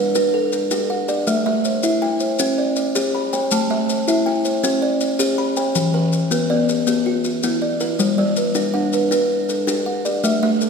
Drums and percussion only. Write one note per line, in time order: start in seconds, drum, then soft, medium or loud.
0.15 maracas medium
0.52 maracas medium
0.71 maracas medium
1.08 maracas soft
1.27 maracas medium
1.65 maracas medium
1.83 maracas medium
2.20 maracas medium
2.39 maracas medium
2.76 maracas medium
2.95 maracas medium
3.33 maracas medium
3.51 maracas medium
3.89 maracas medium
4.08 maracas medium
4.45 maracas medium
4.64 maracas medium
5.01 maracas medium
5.20 maracas medium
5.56 maracas medium
5.75 maracas medium
6.13 maracas medium
6.31 maracas medium
6.69 maracas medium
6.87 maracas medium
7.24 maracas medium
7.43 maracas medium
7.80 maracas soft
7.99 maracas medium
8.36 maracas medium
8.55 maracas medium
8.93 maracas soft
9.12 maracas medium
9.49 maracas soft
9.68 maracas medium
10.05 maracas soft
10.24 maracas medium
10.61 maracas medium